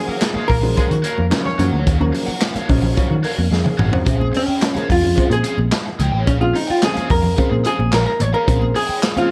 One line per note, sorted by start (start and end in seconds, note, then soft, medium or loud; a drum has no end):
0.00 0.15 C#3 medium
0.00 4.03 D#3 medium
0.00 0.15 F3 medium
0.00 0.15 F#3 medium
0.00 0.16 A#3 medium
0.00 4.03 A#3 soft
0.00 4.03 C#4 medium
0.00 0.44 G#4 medium
0.00 4.03 F5 medium
0.08 0.17 A#3 medium
0.08 0.20 F#4 medium
0.08 0.17 A#4 medium
0.08 0.21 C#5 medium
0.08 0.21 F#5 medium
0.08 muted picked electric bass stroke soft
0.21 muted overdriven electric guitar stroke soft
0.21 snare loud
0.21 clap medium
0.21 closed hi-hat medium
0.21 muted conga soft
0.34 0.46 G#3 medium
0.34 0.47 F#4 medium
0.34 0.46 G#4 medium
0.34 0.48 C#5 medium
0.34 0.48 F5 medium
0.34 muted picked electric bass stroke soft
0.34 high conga medium
0.48 0.74 A#1 medium
0.48 0.57 A#3 medium
0.48 3.47 A#4 loud
0.48 0.57 A#4 medium
0.48 muted overdriven electric guitar stroke soft
0.48 kick medium
0.48 open hi-hat medium
0.48 muted conga soft
0.62 0.92 C#3 medium
0.62 0.92 F3 medium
0.62 0.92 F#3 medium
0.62 0.93 G#3 medium
0.62 muted overdriven electric guitar stroke medium
0.62 low conga medium
0.75 0.85 G#3 loud
0.75 0.93 F#4 medium
0.75 0.85 G#4 loud
0.75 0.89 C#5 medium
0.75 0.88 F5 medium
0.75 muted picked electric bass stroke soft
0.75 kick loud
0.75 closed hi-hat medium
0.75 muted conga soft
0.89 1.03 D#3 loud
0.89 muted overdriven electric guitar stroke soft
0.89 closed hi-hat soft
1.02 1.26 A#3 medium
1.02 1.16 F#4 medium
1.02 1.26 A#4 loud
1.02 1.17 C#5 medium
1.02 1.16 F5 medium
1.02 closed hi-hat medium
1.17 1.31 F2 medium
1.17 muted overdriven electric guitar stroke soft
1.17 high conga medium
1.31 1.43 C#3 loud
1.31 1.43 F3 medium
1.31 1.43 F#3 loud
1.31 1.44 C#4 loud
1.31 muted overdriven electric guitar stroke medium
1.31 snare loud
1.31 clap medium
1.31 closed hi-hat medium
1.31 muted conga soft
1.45 1.68 C#4 loud
1.45 1.67 C#5 loud
1.45 muted overdriven electric guitar stroke soft
1.45 low conga medium
1.58 1.71 F#2 medium
1.58 1.77 C#3 medium
1.58 1.77 F3 medium
1.58 1.77 F#3 medium
1.58 1.77 A#3 loud
1.58 1.72 F#4 medium
1.58 1.72 C#5 medium
1.58 1.70 F#5 medium
1.58 closed hi-hat medium
1.58 high conga medium
1.58 low conga medium
1.72 1.85 D2 medium
1.72 1.84 F#4 medium
1.72 1.85 C#5 medium
1.72 1.86 F#5 medium
1.85 2.11 D#2 medium
1.85 2.03 F#4 medium
1.85 1.99 C#5 medium
1.85 1.97 F5 medium
1.85 kick loud
1.85 closed hi-hat medium
1.99 2.30 C#3 loud
1.99 2.30 F3 medium
1.99 2.30 F#3 medium
1.99 2.30 A#3 loud
1.99 muted overdriven electric guitar stroke medium
1.99 high conga medium
2.12 muted overdriven electric guitar stroke soft
2.12 open hi-hat medium
2.12 muted conga soft
2.26 2.40 F#4 medium
2.26 2.40 C#5 medium
2.26 2.40 F#5 medium
2.26 muted picked electric bass stroke soft
2.41 muted overdriven electric guitar stroke soft
2.41 snare loud
2.41 clap loud
2.41 closed hi-hat medium
2.41 muted conga soft
2.54 2.67 F#4 medium
2.54 2.68 C#5 medium
2.54 2.68 F5 medium
2.54 muted picked electric bass stroke soft
2.54 closed hi-hat medium
2.54 high conga medium
2.68 2.94 A#1 loud
2.68 3.16 C#3 loud
2.68 3.16 F3 loud
2.68 3.17 F#3 medium
2.68 3.17 C#4 loud
2.68 2.95 D#5 medium
2.68 muted overdriven electric guitar stroke soft
2.68 kick medium
2.68 open hi-hat medium
2.82 muted overdriven electric guitar stroke soft
2.82 low conga medium
2.94 3.13 F#4 medium
2.94 3.08 C#5 medium
2.94 3.23 C#5 medium
2.94 3.07 F5 medium
2.94 muted picked electric bass stroke soft
2.94 kick medium
2.94 closed hi-hat medium
2.94 muted conga soft
3.08 3.23 D#3 medium
3.08 muted overdriven electric guitar stroke soft
3.23 3.37 F#4 medium
3.23 3.50 A#4 medium
3.23 3.36 C#5 medium
3.23 3.35 F5 medium
3.23 open hi-hat medium
3.36 3.51 F2 medium
3.36 muted overdriven electric guitar stroke soft
3.36 high conga medium
3.51 3.64 F2 loud
3.51 3.78 G#4 medium
3.51 snare medium
3.64 muted overdriven electric guitar stroke soft
3.64 high tom medium
3.64 low conga medium
3.77 3.92 A1 loud
3.77 3.95 F#4 medium
3.77 4.05 F#4 medium
3.77 3.92 C#5 medium
3.77 3.91 F5 medium
3.77 mid tom loud
3.77 muted conga soft
3.77 high conga medium
3.77 low conga medium
3.92 4.05 C#3 medium
3.92 4.05 F3 medium
3.92 4.05 F#3 medium
3.92 4.05 C4 medium
3.92 muted overdriven electric guitar stroke soft
3.92 floor tom loud
4.05 4.31 A#1 loud
4.05 4.36 C#3 medium
4.05 4.36 F3 medium
4.05 4.37 G#3 medium
4.05 4.37 C4 medium
4.05 4.26 G#4 medium
4.05 4.18 C#5 loud
4.05 4.17 F5 loud
4.05 kick loud
4.05 closed hi-hat medium
4.18 muted overdriven electric guitar stroke soft
4.18 high conga medium
4.32 muted overdriven electric guitar stroke soft
4.32 open hi-hat medium
4.32 muted conga soft
4.37 4.87 C#4 medium
4.46 4.59 G#4 medium
4.46 4.60 C#5 medium
4.46 4.61 G5 medium
4.46 muted picked electric bass stroke soft
4.61 muted overdriven electric guitar stroke soft
4.61 snare loud
4.61 clap loud
4.61 closed hi-hat medium
4.61 muted conga soft
4.74 4.88 C#3 medium
4.74 4.88 F3 medium
4.74 4.88 G#3 medium
4.74 4.88 A#3 medium
4.74 4.87 G#4 medium
4.74 4.88 C#5 medium
4.74 4.88 F5 medium
4.74 muted picked electric bass stroke soft
4.74 closed hi-hat soft
4.74 high conga medium
4.88 5.14 F2 loud
4.88 5.29 F4 medium
4.88 muted overdriven electric guitar stroke soft
4.88 kick medium
4.88 open hi-hat medium
4.88 muted conga soft
5.02 5.09 G#3 soft
5.02 5.10 C#4 medium
5.02 muted overdriven electric guitar stroke soft
5.02 low conga medium
5.15 5.64 C#3 medium
5.15 5.64 F3 medium
5.15 5.65 G#3 medium
5.15 5.65 C4 medium
5.15 5.37 G#4 medium
5.15 5.30 C#5 medium
5.15 5.28 F5 loud
5.15 muted picked electric bass stroke soft
5.15 kick medium
5.15 closed hi-hat medium
5.30 5.43 A#2 medium
5.30 5.58 G#4 medium
5.30 muted overdriven electric guitar stroke soft
5.30 closed hi-hat soft
5.44 5.58 G#4 medium
5.44 5.57 C#5 medium
5.44 5.56 F5 medium
5.44 closed hi-hat medium
5.44 muted conga soft
5.57 5.70 A#1 medium
5.57 muted overdriven electric guitar stroke soft
5.57 high conga medium
5.72 muted overdriven electric guitar stroke soft
5.72 snare loud
5.72 clap medium
5.72 closed hi-hat medium
5.72 muted conga soft
5.86 muted overdriven electric guitar stroke soft
5.99 6.12 C#2 medium
5.99 6.13 G#4 medium
5.99 6.12 C#5 medium
5.99 6.11 G5 medium
5.99 closed hi-hat medium
5.99 high conga medium
5.99 low conga medium
6.12 6.26 A1 medium
6.12 6.24 G#4 soft
6.12 6.25 C#5 medium
6.12 6.26 G5 medium
6.25 6.52 A#1 loud
6.25 6.32 C#4 medium
6.25 6.43 G#4 medium
6.25 6.40 C#5 loud
6.25 6.39 F5 loud
6.25 kick loud
6.25 closed hi-hat medium
6.40 6.59 C#3 medium
6.40 6.59 F3 medium
6.40 6.59 G#3 medium
6.40 6.59 C4 medium
6.40 6.55 F4 medium
6.40 muted overdriven electric guitar stroke medium
6.40 high conga medium
6.54 6.70 D#4 medium
6.54 muted overdriven electric guitar stroke soft
6.54 open hi-hat medium
6.67 6.84 F4 medium
6.67 6.79 G#4 medium
6.67 6.80 C#5 medium
6.67 6.81 G5 medium
6.67 muted picked electric bass stroke soft
6.81 7.06 C#3 medium
6.81 7.06 F3 medium
6.81 7.06 G#3 medium
6.81 7.06 C4 medium
6.81 7.09 G#4 loud
6.81 muted overdriven electric guitar stroke soft
6.81 snare loud
6.81 clap medium
6.81 closed hi-hat medium
6.81 muted conga soft
6.94 7.07 G#4 medium
6.94 7.08 C#5 medium
6.94 7.08 F5 medium
6.94 muted picked electric bass stroke soft
6.94 closed hi-hat medium
6.94 high conga medium
7.08 7.35 F2 medium
7.08 7.67 A#4 loud
7.08 muted overdriven electric guitar stroke soft
7.08 kick loud
7.08 open hi-hat medium
7.22 muted overdriven electric guitar stroke soft
7.22 low conga medium
7.36 7.85 C#3 medium
7.36 7.85 F3 medium
7.36 7.85 G#3 medium
7.36 7.85 C4 medium
7.36 7.54 G#4 medium
7.36 7.50 C#5 medium
7.36 7.49 F5 medium
7.36 muted picked electric bass stroke soft
7.36 kick medium
7.36 closed hi-hat medium
7.36 muted conga soft
7.50 7.64 A#2 loud
7.50 muted overdriven electric guitar stroke soft
7.64 7.78 G#4 medium
7.64 7.94 G#4 loud
7.64 7.78 C#5 medium
7.64 7.77 F5 medium
7.64 closed hi-hat medium
7.64 muted conga soft
7.78 7.91 A#1 medium
7.78 muted overdriven electric guitar stroke soft
7.78 high conga medium
7.91 8.05 A#1 medium
7.91 8.09 G#4 medium
7.91 8.05 A#4 loud
7.91 8.10 C#5 medium
7.91 8.10 F5 medium
7.91 snare medium
7.91 clap medium
7.91 closed hi-hat medium
8.06 8.22 A#4 medium
8.20 8.33 A1 loud
8.20 8.34 C#5 loud
8.20 muted overdriven electric guitar stroke soft
8.20 closed hi-hat medium
8.20 high conga medium
8.20 low conga medium
8.33 8.45 G#4 medium
8.33 8.77 A#4 medium
8.33 8.46 C#5 medium
8.33 8.47 F5 medium
8.46 8.72 A#1 loud
8.46 8.77 C#3 medium
8.46 8.77 F3 medium
8.46 8.77 G#3 medium
8.46 8.77 C4 medium
8.46 8.64 G#4 medium
8.46 8.60 C#5 medium
8.46 8.59 F5 loud
8.46 kick loud
8.46 closed hi-hat loud
8.61 muted overdriven electric guitar stroke soft
8.61 high conga medium
8.74 9.18 G#4 loud
8.74 muted overdriven electric guitar stroke soft
8.74 open hi-hat medium
8.74 muted conga soft
8.87 9.01 G#4 medium
8.87 9.01 C#5 medium
8.87 9.01 G5 medium
8.87 muted picked electric bass stroke soft
9.02 muted overdriven electric guitar stroke soft
9.02 snare loud
9.02 clap loud
9.02 closed hi-hat medium
9.15 9.28 C#3 medium
9.15 9.28 F3 medium
9.15 9.28 G#3 medium
9.15 9.28 C4 medium
9.15 9.31 F4 medium
9.15 9.28 G#4 medium
9.15 9.29 C#5 medium
9.15 9.29 F5 medium
9.15 muted picked electric bass stroke soft
9.15 closed hi-hat soft
9.15 high conga medium